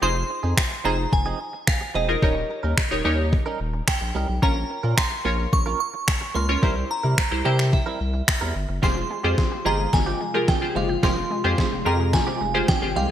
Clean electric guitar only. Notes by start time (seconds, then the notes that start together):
0.02 F3 C4 D#4 G#4
0.16 muted clean electric guitar stroke
0.29 muted clean electric guitar stroke
0.43 F3 C4 D#4 G#4
0.71 muted clean electric guitar stroke
0.84 F3 C4 D#4 G#4
0.98 muted clean electric guitar stroke
1.12 muted clean electric guitar stroke
1.26 F3 C4 D#4 G#4
1.53 muted clean electric guitar stroke
1.67 muted clean electric guitar stroke
1.81 muted clean electric guitar stroke
1.95 F3 C4 D#4 G#4
2.08 muted clean electric guitar stroke
2.22 G3 C#4 D#4 A#4
2.36 muted clean electric guitar stroke
2.50 muted clean electric guitar stroke
2.63 G3 C#4 D#4 A#4
2.91 muted clean electric guitar stroke
3.04 G3 C#4 D#4 A#4
3.18 muted clean electric guitar stroke
3.32 muted clean electric guitar stroke
3.46 G3 C#4 D#4 A#4
3.60 muted clean electric guitar stroke
3.74 muted clean electric guitar stroke
3.87 muted clean electric guitar stroke
4.01 muted clean electric guitar stroke
4.15 G3 C#4 D#4 A#4
4.29 muted clean electric guitar stroke
4.42 A#3 C#4 F4 A#4
4.56 muted clean electric guitar stroke
4.70 muted clean electric guitar stroke
4.83 A#3 C#4 F4 A#4
5.11 muted clean electric guitar stroke
5.25 A#3 C#4 F4 A#4
5.38 muted clean electric guitar stroke
5.52 muted clean electric guitar stroke
5.66 A#3 C#4 F4 A#4
5.80 muted clean electric guitar stroke
5.94 muted clean electric guitar stroke
6.07 muted clean electric guitar stroke
6.21 muted clean electric guitar stroke
6.35 A#3 C#4 F4 A#4
6.49 muted clean electric guitar stroke
6.62 G3 C4 E4 A#4
6.76 muted clean electric guitar stroke
6.90 muted clean electric guitar stroke
7.03 G3 C4 E4 A#4
7.31 muted clean electric guitar stroke
7.45 G3 C4 E4 A#4
7.59 muted clean electric guitar stroke
7.72 muted clean electric guitar stroke
7.86 G3 C4 E4 A#4
8.00 muted clean electric guitar stroke
8.14 muted clean electric guitar stroke
8.27 muted clean electric guitar stroke
8.41 G3 C4 E4 A#4
8.55 muted clean electric guitar stroke
8.69 muted clean electric guitar stroke
8.82 F3 G#3 C4 G4
8.96 muted clean electric guitar stroke
9.10 muted clean electric guitar stroke
9.23 F3 G#3 C4 G4
9.51 muted clean electric guitar stroke
9.65 F3 G#3 C4 G4
9.79 muted clean electric guitar stroke
9.93 muted clean electric guitar stroke
10.06 F3 G#3 C4 G4
10.20 muted clean electric guitar stroke
10.34 muted clean electric guitar stroke
10.48 muted clean electric guitar stroke
10.62 muted clean electric guitar stroke
10.75 F3 G#3 C4 G4
10.89 muted clean electric guitar stroke
11.03 F3 G#3 C4 G4
11.17 muted clean electric guitar stroke
11.30 muted clean electric guitar stroke
11.44 F3 G#3 C4 G4
11.72 muted clean electric guitar stroke
11.85 F3 G#3 C4 G4
11.99 muted clean electric guitar stroke
12.13 muted clean electric guitar stroke
12.27 F3 G#3 C4 G4
12.41 muted clean electric guitar stroke
12.54 muted clean electric guitar stroke
12.68 muted clean electric guitar stroke
12.82 muted clean electric guitar stroke
12.96 F3 G#3 C4 G4